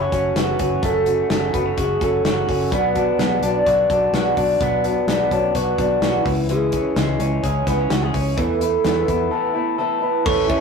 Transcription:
Already playing: steel-string acoustic guitar F#3 A3 C#4 F#4, clean electric guitar A3 C#4, soft synth lead C#5
0.01 clean electric guitar F#4
0.12 fingered electric bass F#1, steel-string acoustic guitar F#3 A3 C#4 F#4, kick, closed hi-hat
0.35 fingered electric bass F#1, steel-string acoustic guitar F#2 C#3 F#3 A3 C#4 F#4, soft synth lead B4, snare, closed hi-hat
0.59 fingered electric bass F#1, steel-string acoustic guitar F#3 A3 C#4 F#4, kick, closed hi-hat
0.83 fingered electric bass F#1, steel-string acoustic guitar F#2 C#3 F#3 A3 C#4 F#4, soft synth lead A4, kick, closed hi-hat
1.06 steel-string acoustic guitar F#3 A3 C#4 F#4, closed hi-hat
1.29 fingered electric bass F#1, steel-string acoustic guitar F#2 C#3 F#3 A3 C#4 F#4, soft synth lead A4, snare, closed hi-hat
1.53 fingered electric bass F#1, steel-string acoustic guitar F#3 A3 C#4 F#4, clean electric guitar B3, kick, closed hi-hat
1.66 clean electric guitar C#4
1.76 fingered electric bass F#1, steel-string acoustic guitar F#3 A3 C#4 F#4, soft synth lead G#4, kick, closed hi-hat
2.00 fingered electric bass F#1, steel-string acoustic guitar F#3 A3 C#4 F#4, soft synth lead A4, kick, closed hi-hat
2.24 fingered electric bass F#1, steel-string acoustic guitar F#2 C#3 F#3 A3 C#4 F#4, snare, closed hi-hat
2.47 fingered electric bass F#1, steel-string acoustic guitar F#3 A3 C#4 F#4, soft synth lead A4, kick, open hi-hat
2.70 fingered electric bass B1, steel-string acoustic guitar B2 F#3 B3 D4 F#4, soft synth lead B4, kick, closed hi-hat
2.94 steel-string acoustic guitar B3 D4 F#4, kick, closed hi-hat
3.19 fingered electric bass B1, steel-string acoustic guitar B2 F#3 B3 D4 F#4, snare, closed hi-hat
3.42 fingered electric bass B1, steel-string acoustic guitar B3 D4 F#4, soft synth lead D5, closed hi-hat
3.65 fingered electric bass B1, steel-string acoustic guitar F#3 B3 D4 F#4, kick, closed hi-hat
3.89 fingered electric bass B1, steel-string acoustic guitar B3 D4 F#4, kick, closed hi-hat
4.13 fingered electric bass B1, steel-string acoustic guitar B2 F#3 B3 D4 F#4, snare, closed hi-hat
4.36 fingered electric bass B1, steel-string acoustic guitar B3 D4 F#4, soft synth lead D5, kick, open hi-hat
4.60 fingered electric bass B1, steel-string acoustic guitar B2 F#3 B3 D4 F#4, kick, closed hi-hat
4.84 steel-string acoustic guitar B3 D4 F#4, closed hi-hat
5.07 fingered electric bass B1, steel-string acoustic guitar B2 F#3 B3 D4 F#4, snare, closed hi-hat
5.31 fingered electric bass B1, steel-string acoustic guitar B3 D4 F#4, soft synth lead C#5, kick, closed hi-hat
5.54 fingered electric bass B1, steel-string acoustic guitar F#3 B3 D4 F#4, soft synth lead B4, kick, closed hi-hat
5.78 fingered electric bass B1, steel-string acoustic guitar B3 D4 F#4, kick, closed hi-hat
6.01 fingered electric bass B1, steel-string acoustic guitar B2 F#3 B3 D4 F#4, soft synth lead E4, snare, closed hi-hat
6.25 fingered electric bass C#2, clean electric guitar E3, steel-string acoustic guitar G#3 C#4 E4, kick, open hi-hat
6.49 steel-string acoustic guitar C#3 G#3 C#4 E4, clean electric guitar E3, soft synth lead G#4, closed hi-hat
6.72 steel-string acoustic guitar G#3 C#4 E4, kick, closed hi-hat
6.96 fingered electric bass C#2, steel-string acoustic guitar C#3 G#3 C#4 E4, snare, closed hi-hat
7.19 fingered electric bass C#2, steel-string acoustic guitar G#3 C#4 E4, closed hi-hat
7.42 fingered electric bass C#2, steel-string acoustic guitar C#3 G#3 C#4 E4, clean electric guitar G#4, soft synth lead C#5, kick, closed hi-hat
7.66 fingered electric bass C#2, steel-string acoustic guitar G#3 C#4 E4, clean electric guitar B3, soft synth lead B4, kick, snare, closed hi-hat
7.79 clean electric guitar C#4
7.90 fingered electric bass C#2, steel-string acoustic guitar C#3 G#3 C#4 E4, clean electric guitar F#4, snare, closed hi-hat
8.02 clean electric guitar G#4
8.13 fingered electric bass C#2, steel-string acoustic guitar G#3 C#4 E4, kick, open hi-hat
8.37 fingered electric bass E2, steel-string acoustic guitar E3 A3 B3 E4, soft synth lead A4, kick, closed hi-hat
8.60 steel-string acoustic guitar A3 B3 E4, closed hi-hat
8.84 fingered electric bass E2, steel-string acoustic guitar E3 A3 B3 E4, snare, closed hi-hat
9.06 fingered electric bass E2, steel-string acoustic guitar A3 B3 E4, kick, closed hi-hat
9.30 steel-string acoustic guitar E3 A3 B3 E4, clean electric guitar A4
9.54 steel-string acoustic guitar A3 B3 E4
9.78 steel-string acoustic guitar E3 A3 B3 E4, clean electric guitar A4
10.01 steel-string acoustic guitar A3 B3 E4, soft synth lead B4
10.25 fingered electric bass A1, steel-string acoustic guitar A2 E3 A3 C#4 E4, transistor combo organ E4 A4 C#5, soft synth lead A4, glockenspiel C#6, kick, crash
10.49 steel-string acoustic guitar A3 C#4 E4, soft synth lead E5, kick, ride

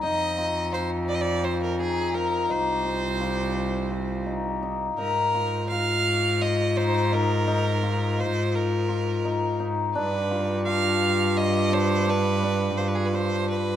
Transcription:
Already playing: hammered dulcimer F4
0.03 cello F2, hammered dulcimer D#4, violin D#5
0.38 hammered dulcimer F4
0.72 hammered dulcimer F4, violin C5
1.08 violin D5
1.15 violin D#5
1.21 violin D5
1.44 hammered dulcimer F4, violin C5
1.63 violin A#4
1.79 hammered dulcimer D#4, violin G#4
2.14 hammered dulcimer D#4, violin A#4
2.49 cello C2, hammered dulcimer D#4, violin C5
2.85 hammered dulcimer F4
3.21 hammered dulcimer F4
3.91 hammered dulcimer F4
4.26 hammered dulcimer D#4
4.63 hammered dulcimer D#4
4.98 cello G#2, hammered dulcimer D#4, violin A#4
5.34 hammered dulcimer F4
5.70 hammered dulcimer F4, violin F5
6.42 hammered dulcimer F4, violin D#5
6.77 hammered dulcimer D#4, violin C5
7.12 hammered dulcimer D#4, violin A#4
7.47 hammered dulcimer D#4
7.83 hammered dulcimer F4
8.18 hammered dulcimer F4, violin C5
8.55 violin A#4
8.89 hammered dulcimer F4
9.25 hammered dulcimer D#4
9.60 hammered dulcimer D#4
9.95 cello G2, hammered dulcimer D4, violin B4
10.31 hammered dulcimer F4
10.65 hammered dulcimer F4, violin F5
11.37 hammered dulcimer F4, violin D#5
11.72 hammered dulcimer D4, violin C5
12.08 hammered dulcimer D4, violin B4
12.43 hammered dulcimer D4
12.77 hammered dulcimer F4, violin C5
12.88 violin B4
12.95 violin G#4
13.06 violin B4
13.14 hammered dulcimer F4, violin C5
13.50 violin B4

